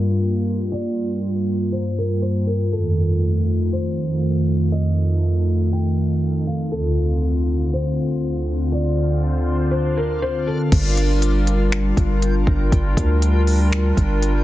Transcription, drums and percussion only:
10.72 kick, closed hi-hat, crash
10.97 closed hi-hat
11.22 closed hi-hat
11.47 closed hi-hat
11.72 finger snap, closed hi-hat
11.97 kick, closed hi-hat
12.22 closed hi-hat
12.47 kick
12.72 kick, closed hi-hat
12.97 kick, closed hi-hat
13.22 closed hi-hat
13.47 open hi-hat
13.72 finger snap, closed hi-hat
13.97 kick, closed hi-hat
14.22 closed hi-hat

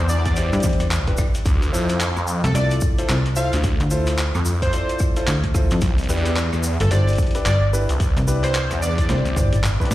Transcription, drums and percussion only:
0.09 shaker
0.25 kick, closed hi-hat, shaker
0.36 closed hi-hat, shaker
0.52 closed hi-hat, shaker
0.55 closed hi-hat
0.60 kick, closed hi-hat, shaker
0.64 closed hi-hat
0.69 closed hi-hat
0.73 closed hi-hat
0.79 cross-stick, closed hi-hat, shaker
0.91 clap, closed hi-hat, shaker
1.07 kick, closed hi-hat
1.17 kick, cross-stick, shaker
1.35 closed hi-hat, shaker
1.45 kick, closed hi-hat, shaker
1.62 closed hi-hat, shaker
1.74 shaker
1.89 closed hi-hat, shaker
2.00 clap, closed hi-hat, shaker
2.16 cross-stick, shaker
2.27 shaker
2.44 closed hi-hat, shaker
2.55 closed hi-hat, shaker
2.71 closed hi-hat, shaker
2.81 kick, shaker
2.98 closed hi-hat, shaker
3.09 clap, closed hi-hat, shaker
3.26 closed hi-hat
3.36 shaker
3.53 closed hi-hat, shaker
3.63 kick, closed hi-hat, shaker
3.80 closed hi-hat, shaker
3.90 shaker
4.06 clap, closed hi-hat, shaker
4.18 clap, closed hi-hat, shaker
4.35 cross-stick, shaker
4.45 shaker
4.62 kick, closed hi-hat, shaker
4.73 closed hi-hat, shaker
4.89 closed hi-hat, shaker
4.99 kick, cross-stick, shaker
5.16 closed hi-hat, shaker
5.27 clap, closed hi-hat, shaker
5.44 kick, closed hi-hat
5.54 kick, cross-stick, shaker
5.70 closed hi-hat, shaker
5.81 kick, closed hi-hat, shaker
5.98 closed hi-hat, shaker
6.04 closed hi-hat
6.09 closed hi-hat, shaker
6.17 closed hi-hat
6.25 closed hi-hat, shaker
6.36 clap, closed hi-hat, shaker
6.53 cross-stick, shaker
6.63 shaker
6.80 closed hi-hat, shaker
6.91 closed hi-hat, shaker
7.07 closed hi-hat, shaker
7.10 closed hi-hat
7.13 closed hi-hat
7.16 closed hi-hat, shaker
7.18 kick, closed hi-hat
7.22 closed hi-hat
7.27 closed hi-hat
7.31 closed hi-hat
7.35 closed hi-hat, shaker
7.46 clap, closed hi-hat, shaker
7.74 shaker
7.89 closed hi-hat, shaker
8.00 kick, closed hi-hat, shaker
8.17 closed hi-hat, shaker
8.28 shaker
8.44 clap, closed hi-hat, shaker
8.54 clap, closed hi-hat, shaker
8.71 cross-stick, closed hi-hat, shaker
8.82 shaker
8.98 kick, closed hi-hat, shaker
9.09 snare, closed hi-hat, shaker
9.25 closed hi-hat, high tom, shaker
9.36 kick, shaker
9.53 closed hi-hat, mid tom, shaker
9.64 clap, closed hi-hat, mid tom, shaker
9.80 kick, shaker
9.85 closed hi-hat
9.91 kick, snare, shaker

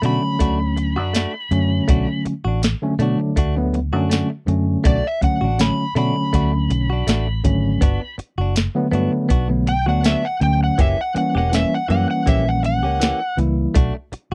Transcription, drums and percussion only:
0.03 closed hi-hat
0.40 kick, closed hi-hat
0.77 closed hi-hat
1.15 snare, closed hi-hat, tambourine
1.51 closed hi-hat
1.89 kick, closed hi-hat
2.26 closed hi-hat
2.63 snare, closed hi-hat, tambourine
3.00 closed hi-hat
3.37 kick, closed hi-hat
3.74 closed hi-hat
4.11 snare, closed hi-hat, tambourine
4.48 closed hi-hat
4.85 kick, closed hi-hat
5.22 kick, closed hi-hat
5.59 snare, closed hi-hat, tambourine
5.96 closed hi-hat
6.33 kick, closed hi-hat
6.70 closed hi-hat
7.08 snare, closed hi-hat, tambourine
7.45 kick, closed hi-hat
7.82 kick, closed hi-hat
8.19 closed hi-hat
8.56 snare, closed hi-hat, tambourine
8.93 closed hi-hat
9.30 kick, closed hi-hat
9.67 closed hi-hat
10.04 snare, closed hi-hat, tambourine
10.41 closed hi-hat
10.79 kick, closed hi-hat
11.16 closed hi-hat
11.53 snare, closed hi-hat, tambourine
11.90 closed hi-hat
12.27 kick, closed hi-hat
12.64 closed hi-hat
13.01 snare, closed hi-hat, tambourine
13.38 closed hi-hat
13.75 kick, closed hi-hat
14.13 closed hi-hat

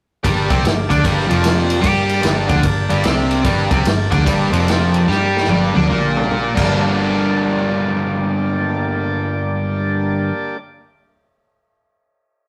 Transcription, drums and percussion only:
0.24 kick, ride
0.50 kick, ride
0.65 snare, ride
0.90 kick, ride
1.04 kick, ride
1.20 snare
1.31 ride
1.44 snare, ride
1.70 ride
1.84 kick, ride
2.09 ride
2.23 snare, ride
2.49 kick, ride
2.63 kick, ride
2.90 ride
3.04 snare, ride
3.31 ride
3.44 kick, ride
3.71 kick, ride
3.85 snare, ride
4.12 kick, ride
4.26 kick, ride
4.53 ride
4.68 snare, ride
4.94 ride
5.11 snare
5.37 snare
5.44 snare
5.49 high tom
5.76 high tom
5.83 mid tom
5.91 mid tom
6.17 mid tom
6.24 mid tom
6.31 mid tom
6.57 kick, crash

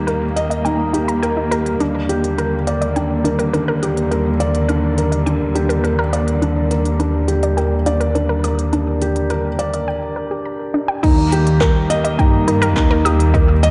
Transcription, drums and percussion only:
0.08 closed hi-hat
0.37 closed hi-hat
0.51 closed hi-hat
0.65 closed hi-hat
0.94 closed hi-hat
1.09 closed hi-hat
1.23 closed hi-hat
1.52 closed hi-hat
1.66 closed hi-hat
1.80 closed hi-hat
2.09 closed hi-hat
2.24 closed hi-hat
2.38 closed hi-hat
2.67 closed hi-hat
2.82 closed hi-hat
2.96 closed hi-hat
3.25 closed hi-hat
3.39 closed hi-hat
3.54 closed hi-hat
3.83 closed hi-hat
3.97 closed hi-hat
4.12 closed hi-hat
4.40 closed hi-hat
4.55 closed hi-hat
4.69 closed hi-hat
4.98 closed hi-hat
5.12 closed hi-hat
5.27 closed hi-hat
5.56 closed hi-hat
5.70 closed hi-hat
5.85 closed hi-hat
6.13 closed hi-hat
6.28 closed hi-hat
6.42 closed hi-hat
6.71 closed hi-hat
6.85 closed hi-hat
7.00 closed hi-hat
7.28 closed hi-hat
7.43 closed hi-hat
7.58 closed hi-hat
7.86 closed hi-hat
8.01 closed hi-hat
8.15 closed hi-hat
8.44 closed hi-hat
8.59 closed hi-hat
8.73 closed hi-hat
9.02 closed hi-hat
9.16 closed hi-hat
9.30 closed hi-hat
9.59 closed hi-hat
9.74 closed hi-hat
11.03 kick, closed hi-hat, crash
11.32 closed hi-hat
11.47 closed hi-hat
11.61 kick, clap, closed hi-hat
11.90 closed hi-hat
12.05 closed hi-hat
12.19 kick, closed hi-hat
12.48 closed hi-hat
12.63 closed hi-hat
12.77 kick, clap, closed hi-hat
13.06 closed hi-hat
13.20 closed hi-hat
13.34 kick, closed hi-hat
13.63 closed hi-hat

